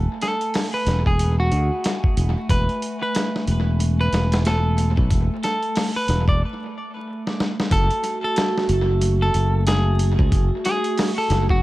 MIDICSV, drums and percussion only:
0, 0, Header, 1, 2, 480
1, 0, Start_track
1, 0, Key_signature, 3, "minor"
1, 0, Tempo, 652174
1, 1839, Time_signature, 4, 2, 24, 8
1, 8557, End_track
2, 0, Start_track
2, 0, Title_t, "Drums"
2, 158, Note_on_c, 9, 42, 67
2, 169, Note_on_c, 9, 38, 40
2, 231, Note_off_c, 9, 42, 0
2, 242, Note_off_c, 9, 38, 0
2, 302, Note_on_c, 9, 42, 39
2, 376, Note_off_c, 9, 42, 0
2, 397, Note_on_c, 9, 46, 74
2, 408, Note_on_c, 9, 38, 110
2, 471, Note_off_c, 9, 46, 0
2, 482, Note_off_c, 9, 38, 0
2, 637, Note_on_c, 9, 42, 67
2, 648, Note_on_c, 9, 38, 42
2, 711, Note_off_c, 9, 42, 0
2, 722, Note_off_c, 9, 38, 0
2, 780, Note_on_c, 9, 36, 78
2, 854, Note_off_c, 9, 36, 0
2, 879, Note_on_c, 9, 42, 76
2, 952, Note_off_c, 9, 42, 0
2, 1115, Note_on_c, 9, 42, 54
2, 1189, Note_off_c, 9, 42, 0
2, 1355, Note_on_c, 9, 42, 79
2, 1366, Note_on_c, 9, 38, 106
2, 1428, Note_off_c, 9, 42, 0
2, 1439, Note_off_c, 9, 38, 0
2, 1500, Note_on_c, 9, 36, 91
2, 1573, Note_off_c, 9, 36, 0
2, 1598, Note_on_c, 9, 42, 66
2, 1671, Note_off_c, 9, 42, 0
2, 1836, Note_on_c, 9, 36, 105
2, 1837, Note_on_c, 9, 42, 80
2, 1910, Note_off_c, 9, 36, 0
2, 1911, Note_off_c, 9, 42, 0
2, 1981, Note_on_c, 9, 42, 39
2, 2055, Note_off_c, 9, 42, 0
2, 2078, Note_on_c, 9, 42, 60
2, 2152, Note_off_c, 9, 42, 0
2, 2316, Note_on_c, 9, 42, 86
2, 2327, Note_on_c, 9, 38, 104
2, 2390, Note_off_c, 9, 42, 0
2, 2401, Note_off_c, 9, 38, 0
2, 2471, Note_on_c, 9, 38, 43
2, 2545, Note_off_c, 9, 38, 0
2, 2557, Note_on_c, 9, 42, 62
2, 2630, Note_off_c, 9, 42, 0
2, 2798, Note_on_c, 9, 42, 78
2, 2871, Note_off_c, 9, 42, 0
2, 3037, Note_on_c, 9, 42, 68
2, 3048, Note_on_c, 9, 38, 88
2, 3111, Note_off_c, 9, 42, 0
2, 3122, Note_off_c, 9, 38, 0
2, 3181, Note_on_c, 9, 42, 74
2, 3192, Note_on_c, 9, 38, 99
2, 3254, Note_off_c, 9, 42, 0
2, 3265, Note_off_c, 9, 38, 0
2, 3277, Note_on_c, 9, 42, 74
2, 3288, Note_on_c, 9, 38, 103
2, 3350, Note_off_c, 9, 42, 0
2, 3361, Note_off_c, 9, 38, 0
2, 3518, Note_on_c, 9, 42, 69
2, 3592, Note_off_c, 9, 42, 0
2, 3661, Note_on_c, 9, 36, 91
2, 3734, Note_off_c, 9, 36, 0
2, 3757, Note_on_c, 9, 36, 103
2, 3757, Note_on_c, 9, 42, 85
2, 3831, Note_off_c, 9, 36, 0
2, 3831, Note_off_c, 9, 42, 0
2, 3999, Note_on_c, 9, 42, 63
2, 4010, Note_on_c, 9, 38, 44
2, 4073, Note_off_c, 9, 42, 0
2, 4084, Note_off_c, 9, 38, 0
2, 4140, Note_on_c, 9, 42, 41
2, 4214, Note_off_c, 9, 42, 0
2, 4236, Note_on_c, 9, 46, 79
2, 4247, Note_on_c, 9, 38, 105
2, 4309, Note_off_c, 9, 46, 0
2, 4320, Note_off_c, 9, 38, 0
2, 4477, Note_on_c, 9, 42, 66
2, 4488, Note_on_c, 9, 38, 45
2, 4550, Note_off_c, 9, 42, 0
2, 4561, Note_off_c, 9, 38, 0
2, 4620, Note_on_c, 9, 36, 85
2, 4694, Note_off_c, 9, 36, 0
2, 5351, Note_on_c, 9, 38, 47
2, 5425, Note_off_c, 9, 38, 0
2, 5448, Note_on_c, 9, 38, 79
2, 5522, Note_off_c, 9, 38, 0
2, 5591, Note_on_c, 9, 38, 74
2, 5665, Note_off_c, 9, 38, 0
2, 5676, Note_on_c, 9, 42, 82
2, 5677, Note_on_c, 9, 36, 106
2, 5750, Note_off_c, 9, 42, 0
2, 5751, Note_off_c, 9, 36, 0
2, 5819, Note_on_c, 9, 42, 38
2, 5892, Note_off_c, 9, 42, 0
2, 5915, Note_on_c, 9, 42, 67
2, 5989, Note_off_c, 9, 42, 0
2, 6155, Note_on_c, 9, 42, 88
2, 6167, Note_on_c, 9, 38, 122
2, 6229, Note_off_c, 9, 42, 0
2, 6240, Note_off_c, 9, 38, 0
2, 6312, Note_on_c, 9, 38, 47
2, 6385, Note_off_c, 9, 38, 0
2, 6395, Note_on_c, 9, 42, 69
2, 6468, Note_off_c, 9, 42, 0
2, 6634, Note_on_c, 9, 42, 83
2, 6708, Note_off_c, 9, 42, 0
2, 6875, Note_on_c, 9, 42, 60
2, 6949, Note_off_c, 9, 42, 0
2, 7115, Note_on_c, 9, 42, 90
2, 7126, Note_on_c, 9, 38, 116
2, 7189, Note_off_c, 9, 42, 0
2, 7200, Note_off_c, 9, 38, 0
2, 7355, Note_on_c, 9, 42, 66
2, 7429, Note_off_c, 9, 42, 0
2, 7499, Note_on_c, 9, 36, 90
2, 7573, Note_off_c, 9, 36, 0
2, 7595, Note_on_c, 9, 36, 108
2, 7595, Note_on_c, 9, 42, 82
2, 7669, Note_off_c, 9, 36, 0
2, 7669, Note_off_c, 9, 42, 0
2, 7836, Note_on_c, 9, 42, 64
2, 7847, Note_on_c, 9, 38, 43
2, 7910, Note_off_c, 9, 42, 0
2, 7921, Note_off_c, 9, 38, 0
2, 7979, Note_on_c, 9, 42, 44
2, 8053, Note_off_c, 9, 42, 0
2, 8077, Note_on_c, 9, 46, 80
2, 8088, Note_on_c, 9, 38, 110
2, 8151, Note_off_c, 9, 46, 0
2, 8162, Note_off_c, 9, 38, 0
2, 8317, Note_on_c, 9, 42, 70
2, 8328, Note_on_c, 9, 38, 43
2, 8391, Note_off_c, 9, 42, 0
2, 8402, Note_off_c, 9, 38, 0
2, 8460, Note_on_c, 9, 36, 89
2, 8534, Note_off_c, 9, 36, 0
2, 8557, End_track
0, 0, End_of_file